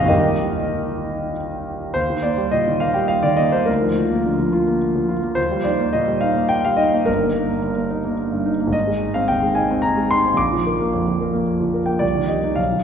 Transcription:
0.00 0.12 A#0 medium
0.00 0.12 A#1 medium
0.00 0.12 D3 soft
0.00 0.12 G#3 soft
0.00 0.13 C4 medium
0.00 0.08 D#5 medium
0.00 0.12 F5 medium
0.05 1.89 D#2 medium
0.05 1.89 D#3 soft
0.05 1.90 G3 soft
0.05 1.91 A#3 soft
0.05 1.34 D#5 medium
0.09 1.31 G4 medium
0.09 1.31 A#4 medium
1.94 3.64 D#2 soft
1.94 2.23 C5 medium
2.10 2.33 D#3 soft
2.23 2.47 A#3 soft
2.23 2.52 D5 medium
2.38 2.61 G3 soft
2.51 2.76 A#2 soft
2.51 2.81 D#5 medium
2.68 2.90 D#3 soft
2.80 3.05 A#3 soft
2.80 2.95 F5 medium
2.94 3.42 G3 soft
2.94 3.09 G5 medium
3.08 3.24 F5 medium
3.23 3.47 D#3 soft
3.23 3.38 D5 medium
3.37 3.62 A#3 soft
3.37 3.52 D#5 medium
3.52 3.68 G3 soft
3.52 3.67 C5 medium
3.65 5.33 D2 medium
3.65 5.36 A#4 medium
3.82 4.05 F3 soft
3.96 4.19 F4 soft
4.11 4.34 A#3 soft
4.26 4.48 D3 soft
4.39 4.62 F3 soft
4.53 4.76 F4 soft
4.66 5.12 A#3 soft
4.95 5.18 F3 soft
5.09 5.31 F4 soft
5.22 5.37 A#3 soft
5.35 7.03 D#2 soft
5.35 5.64 C5 medium
5.51 5.74 G3 soft
5.64 5.88 D#4 soft
5.64 5.93 D5 medium
5.79 6.02 A#3 soft
5.93 6.17 A#2 soft
5.93 6.22 D#5 medium
6.07 6.30 G3 soft
6.21 6.45 D#4 soft
6.21 6.50 F5 medium
6.35 6.81 A#3 soft
6.49 6.64 G5 medium
6.65 6.88 G3 soft
6.65 6.79 F5 medium
6.77 7.01 D#4 soft
6.77 7.06 D#5 medium
6.94 7.07 A#3 soft
7.05 8.70 G1 medium
7.05 8.73 A#4 medium
7.22 7.44 A#3 soft
7.35 7.57 D#4 soft
7.48 7.71 A#3 soft
7.62 7.85 G2 soft
7.76 7.99 A#3 soft
7.91 8.13 D#4 soft
8.05 8.49 A#3 soft
8.32 8.54 G2 soft
8.46 8.68 D#4 soft
8.60 8.74 A#3 soft
8.67 10.31 G#1 soft
8.73 9.14 D#5 medium
8.87 9.09 G#3 soft
9.02 9.23 D#4 soft
9.14 9.37 C4 soft
9.14 9.28 F5 medium
9.28 9.51 D#2 soft
9.28 9.55 G5 medium
9.43 9.64 G#3 soft
9.55 9.78 D#4 soft
9.55 9.83 G#5 medium
9.71 10.15 C4 soft
9.82 10.10 A#5 medium
9.97 10.19 G#3 soft
10.11 10.33 D#4 soft
10.11 10.38 C6 medium
10.25 10.39 C4 soft
10.33 11.96 A#1 soft
10.33 11.88 D6 medium
10.52 10.74 F3 soft
10.66 10.88 A#4 soft
10.80 11.02 A#3 soft
10.94 11.16 F2 soft
11.08 11.29 F3 soft
11.21 11.43 A#4 soft
11.33 11.77 A#3 soft
11.61 11.83 F3 soft
11.74 11.96 A#4 soft
11.86 12.02 A#3 soft
11.86 12.01 G5 medium
11.99 12.55 C2 soft
11.99 12.28 D5 medium
12.15 12.38 D#3 soft
12.28 12.52 G4 soft
12.28 12.57 D#5 soft
12.44 12.58 D#4 soft
12.56 12.84 B1 soft
12.56 12.84 F5 medium
12.72 12.84 D#3 soft

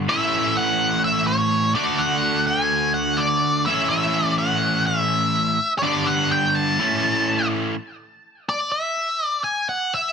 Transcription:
0.09 1.75 A2 medium
0.09 1.75 E3 medium
0.09 1.76 A3 loud
0.09 1.76 C#4 loud
0.09 1.76 E4 loud
0.09 0.58 E5 medium
0.57 1.01 F#5 medium
1.04 1.27 E5 medium
1.27 1.74 C#5 medium
1.75 3.65 D3 loud
1.75 3.66 A3 medium
1.75 3.66 D4 medium
1.75 3.67 F#4 medium
1.75 2.00 D5 medium
1.98 2.46 F#5 loud
2.47 2.94 G#5 medium
2.94 3.19 F#5 loud
3.18 3.63 D5 medium
3.66 5.57 A2 medium
3.66 5.58 E3 loud
3.66 5.58 A3 loud
3.66 5.58 C#4 loud
3.66 3.88 E5 medium
3.70 5.59 E4 loud
3.90 4.35 E5 loud
4.38 4.86 F#5 loud
4.87 5.73 E5 medium
5.79 5.83 C#5 medium
5.83 6.77 G2 medium
5.83 6.78 D3 loud
5.83 6.78 G3 loud
5.83 6.79 B3 loud
5.83 6.79 D4 loud
5.83 6.08 D5 loud
6.07 6.31 F#5 loud
6.32 6.56 G5 loud
6.55 7.47 A5 medium
6.79 7.73 A2 medium
6.79 7.74 E3 medium
6.79 7.74 A3 medium
6.79 7.75 C#4 loud
6.79 7.75 E4 medium
8.49 8.71 D5 medium
8.72 9.27 E5 medium
9.27 9.44 D5 medium
9.44 9.69 G#5 medium
9.69 9.93 F#5 loud
9.94 10.12 E5 medium

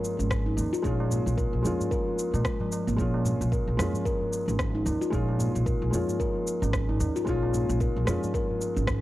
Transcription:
0.00 0.82 G#3 medium
0.00 0.84 C#4 medium
0.00 0.86 F4 loud
0.00 tabla na soft
0.00 tabla tin soft
0.04 shaker medium
0.19 0.58 G#1 medium
0.19 0.30 C#4 medium
0.19 shaker soft
0.30 kick loud
0.30 cross-stick medium
0.30 shaker soft
0.46 0.52 D#4 medium
0.57 0.67 D#2 loud
0.57 tabla na medium
0.57 shaker medium
0.73 1.10 F4 loud
0.73 tabla tin soft
0.73 shaker soft
0.82 1.17 A#1 loud
0.82 1.61 G#3 medium
0.82 1.62 C#4 medium
0.82 1.63 F4 medium
0.82 kick loud
0.82 shaker soft
1.00 tabla na medium
1.10 1.20 A#3 medium
1.10 tabla tin soft
1.10 tabla ge medium
1.10 shaker medium
1.26 1.41 A#1 medium
1.26 shaker soft
1.37 1.63 A#4 medium
1.37 kick loud
1.37 shaker soft
1.53 1.60 A#1 medium
1.62 1.74 F2 medium
1.62 1.79 F3 medium
1.62 2.95 G#3 medium
1.62 2.96 C#4 medium
1.62 2.97 F4 medium
1.62 shaker medium
1.80 tabla tin medium
1.80 tabla ge medium
1.80 shaker soft
1.91 2.00 A#4 medium
1.91 kick medium
1.91 shaker soft
2.19 shaker medium
2.33 2.40 A#2 medium
2.33 2.40 G#3 medium
2.33 tabla na medium
2.33 shaker soft
2.45 kick loud
2.45 cross-stick medium
2.45 shaker soft
2.60 2.70 F3 medium
2.60 tabla na medium
2.60 tabla ge loud
2.72 tabla na medium
2.72 shaker medium
2.87 2.94 G#1 medium
2.87 2.97 A#3 loud
2.87 shaker soft
2.96 3.31 A#1 medium
2.96 3.75 G#3 medium
2.96 3.76 C#4 medium
2.96 kick loud
2.96 shaker soft
3.00 3.77 F4 medium
3.14 tabla na medium
3.24 3.34 A#3 medium
3.24 tabla tin soft
3.24 tabla ge medium
3.24 shaker medium
3.41 3.56 A#1 medium
3.41 shaker soft
3.52 3.78 A#4 medium
3.52 kick loud
3.52 shaker soft
3.68 3.74 A#1 medium
3.77 3.88 F2 medium
3.77 3.93 F3 medium
3.77 5.09 G#3 medium
3.77 5.10 C#4 medium
3.77 5.11 F4 medium
3.77 cross-stick medium
3.77 shaker medium
3.93 tabla tin medium
3.93 tabla ge medium
3.93 shaker soft
4.05 4.14 A#4 medium
4.05 kick loud
4.05 shaker soft
4.21 tabla ge medium
4.32 tabla na soft
4.32 tabla tin soft
4.32 shaker medium
4.48 4.87 G#1 medium
4.48 4.59 C#4 medium
4.48 shaker soft
4.59 kick loud
4.59 cross-stick medium
4.59 shaker soft
4.75 4.81 D#4 medium
4.86 4.95 D#2 medium
4.86 tabla na medium
4.86 shaker medium
5.01 5.38 F4 loud
5.01 tabla tin soft
5.01 shaker soft
5.10 5.45 A#1 loud
5.10 5.89 G#3 medium
5.10 5.90 C#4 medium
5.10 5.91 F4 loud
5.10 kick medium
5.10 shaker soft
5.29 tabla na medium
5.39 5.48 A#3 medium
5.39 tabla tin soft
5.39 tabla ge medium
5.39 shaker medium
5.55 5.70 A#1 medium
5.55 shaker soft
5.66 5.92 A#4 medium
5.66 kick loud
5.66 shaker soft
5.82 5.89 A#1 medium
5.91 6.03 F2 medium
5.91 6.08 F3 medium
5.91 7.23 G#3 medium
5.91 7.24 C#4 medium
5.91 7.25 F4 medium
5.91 shaker medium
6.08 tabla tin medium
6.08 tabla ge medium
6.08 shaker soft
6.20 6.29 A#4 medium
6.20 kick medium
6.20 shaker soft
6.47 shaker medium
6.62 7.02 G#1 loud
6.62 6.73 C#4 medium
6.62 tabla na medium
6.62 shaker soft
6.73 kick loud
6.73 cross-stick medium
6.73 shaker soft
6.89 6.95 D#4 medium
6.89 tabla na medium
6.89 tabla ge medium
7.00 7.10 D#2 medium
7.00 tabla na medium
7.00 shaker medium
7.16 7.53 F4 loud
7.16 shaker soft
7.25 7.60 A#1 medium
7.25 8.03 G#3 medium
7.25 8.04 C#4 medium
7.25 kick medium
7.25 shaker soft
7.29 8.06 F4 loud
7.43 tabla na medium
7.54 7.63 A#3 medium
7.54 tabla tin soft
7.54 tabla ge medium
7.54 shaker medium
7.69 7.84 A#1 loud
7.69 shaker soft
7.80 8.06 A#4 medium
7.80 kick medium
7.80 shaker soft
7.96 8.03 A#1 loud
8.05 8.17 F2 medium
8.05 8.22 F3 medium
8.05 9.01 G#3 medium
8.05 9.01 C#4 medium
8.05 cross-stick medium
8.05 shaker medium
8.09 9.01 F4 medium
8.23 tabla tin medium
8.23 tabla ge medium
8.23 shaker soft
8.34 8.43 A#4 loud
8.34 kick loud
8.34 shaker soft
8.51 tabla ge medium
8.60 tabla na soft
8.60 tabla tin medium
8.60 shaker medium
8.76 9.01 G#1 medium
8.76 8.87 C#4 medium
8.76 shaker soft
8.87 kick loud
8.87 cross-stick medium
8.87 shaker soft

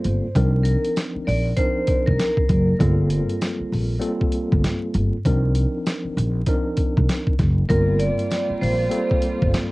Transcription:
0.00 0.26 G3 loud
0.00 0.26 A#3 medium
0.00 0.26 C4 medium
0.00 0.26 F4 medium
0.00 0.27 A4 loud
0.04 0.19 G1 medium
0.04 closed hi-hat medium
0.35 0.74 C2 loud
0.35 1.50 F3 medium
0.35 1.50 C4 medium
0.35 1.50 D4 medium
0.35 1.50 D#4 medium
0.35 1.51 A#4 loud
0.35 kick loud
0.35 closed hi-hat medium
0.64 0.92 A#4 medium
0.64 closed hi-hat medium
0.85 closed hi-hat medium
0.96 snare loud
0.96 closed hi-hat loud
0.96 tambourine medium
1.15 muted upright bass stroke soft
1.27 1.52 A#1 loud
1.27 1.43 D5 medium
1.27 open hi-hat medium
1.56 2.43 F3 medium
1.56 2.44 C4 medium
1.56 2.44 D4 medium
1.56 2.44 D#4 medium
1.56 2.44 A#4 loud
1.56 2.03 C5 medium
1.56 kick loud
1.56 closed hi-hat medium
1.87 kick loud
1.87 closed hi-hat medium
2.06 2.17 C2 medium
2.06 2.76 A#4 medium
2.06 kick loud
2.19 snare loud
2.19 closed hi-hat loud
2.19 tambourine medium
2.37 kick loud
2.49 2.74 F#1 loud
2.49 kick loud
2.49 closed hi-hat medium
2.79 3.19 G1 loud
2.79 3.94 G3 loud
2.79 3.94 A#3 medium
2.79 3.95 C4 medium
2.79 3.95 F4 medium
2.79 3.95 A4 loud
2.79 kick loud
2.79 closed hi-hat medium
3.10 closed hi-hat medium
3.29 closed hi-hat medium
3.41 snare loud
3.41 closed hi-hat medium
3.41 tambourine medium
3.60 muted upright bass stroke soft
3.72 3.96 A#1 medium
3.72 open hi-hat medium
3.99 5.16 G3 medium
3.99 5.16 A#3 medium
3.99 5.16 C4 medium
3.99 5.16 F4 medium
3.99 5.16 A4 loud
3.99 closed hi-hat medium
4.21 kick loud
4.32 closed hi-hat medium
4.52 4.62 G1 medium
4.52 kick loud
4.64 snare loud
4.64 closed hi-hat loud
4.64 tambourine medium
4.94 5.09 G1 loud
4.94 closed hi-hat medium
5.25 5.64 C2 loud
5.25 6.40 F3 medium
5.25 6.40 C4 medium
5.25 6.40 D4 medium
5.25 6.40 D#4 medium
5.25 6.40 A#4 loud
5.25 kick loud
5.25 closed hi-hat medium
5.55 closed hi-hat medium
5.86 snare loud
5.86 closed hi-hat loud
5.86 tambourine medium
6.05 muted upright bass stroke soft
6.17 6.41 A#1 loud
6.17 closed hi-hat medium
6.46 7.33 F3 medium
6.46 7.33 C4 medium
6.46 7.34 D4 medium
6.46 7.34 D#4 medium
6.46 7.34 A#4 loud
6.46 kick loud
6.46 closed hi-hat medium
6.77 kick medium
6.77 closed hi-hat medium
6.97 7.07 C2 medium
6.97 kick loud
7.09 snare loud
7.09 closed hi-hat loud
7.09 tambourine medium
7.27 kick loud
7.39 7.63 F#1 loud
7.39 kick loud
7.39 snare soft
7.39 closed hi-hat medium
7.69 8.09 G1 loud
7.69 8.84 G3 loud
7.69 9.72 G3 medium
7.69 8.84 A#3 medium
7.69 9.72 A#3 medium
7.69 8.84 C4 medium
7.69 9.72 F4 medium
7.69 8.85 F4 medium
7.69 7.97 A#4 loud
7.69 8.85 A#4 loud
7.69 kick loud
7.69 closed hi-hat medium
7.99 8.57 D5 medium
7.99 closed hi-hat medium
8.19 closed hi-hat medium
8.31 snare medium
8.31 closed hi-hat medium
8.31 tambourine medium
8.49 muted upright bass stroke medium
8.61 8.86 A#1 medium
8.61 9.49 C5 medium
8.61 open hi-hat medium
8.89 9.72 G3 loud
8.89 9.72 A#3 medium
8.89 9.72 C4 medium
8.89 9.72 F4 medium
8.89 9.72 A4 loud
8.89 closed hi-hat medium
9.11 kick loud
9.22 closed hi-hat medium
9.42 9.51 G1 medium
9.42 kick loud
9.54 snare loud
9.54 closed hi-hat loud
9.54 tambourine medium

